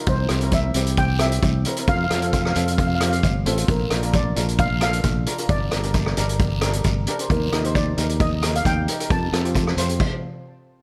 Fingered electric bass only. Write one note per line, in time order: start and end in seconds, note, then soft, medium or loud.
0.07 0.28 C2 medium
0.30 0.72 C2 medium
0.75 1.39 C2 medium
1.43 1.64 C2 medium
1.88 2.09 F2 medium
2.10 2.53 F2 medium
2.56 3.20 F2 medium
3.23 3.44 G1 medium
3.46 3.67 A1 medium
3.68 3.90 A#1 medium
3.91 4.33 A#1 medium
4.37 5.01 A#1 medium
5.04 5.25 A#1 medium
5.49 5.70 G1 loud
5.73 6.14 G1 medium
6.18 6.81 G1 medium
6.85 7.06 G1 medium
7.30 7.51 D#2 loud
7.53 7.94 D#2 medium
7.98 8.61 D#2 medium
8.65 8.86 D#2 medium
9.10 9.31 F2 loud
9.32 9.74 F2 medium
9.77 9.98 F2 medium